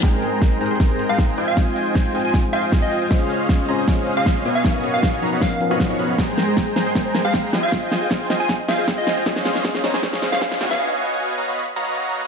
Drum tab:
HH |x---x---x---xxxxx---x---x---x---|x---x---x---xxxxx---x---x---x---|x---x---x---xxxxx---x---x---x---|x---x---x---xxxxx---x---x---x---|
SD |o-------o-------o-------o-------|o-------o-------o-------o-------|o-------o-------o-------o-------|o-------o-------o-------o-------|
BD |o-------o-------o-------o-------|o-------o-------o-------o-------|o-------o-------o-------o-------|o-------o-------o-------o-------|

HH |x---x---x---xxxxx---x---x---o---|x---x---x---xxxxx---x---x---o---|x---x---x---xxxxx---x---x---o---|--------------------------------|
SD |o---o---o---o---o---o---o---o---|o---o---o---o---o---o---o---o---|o-o-o-o-o-o-o-o-o-o-o-o-o-o-o-o-|--------------------------------|
BD |o-------o-------o-------o-------|o-------o-------o-------o-------|o-------o-------o-------o-------|--------------------------------|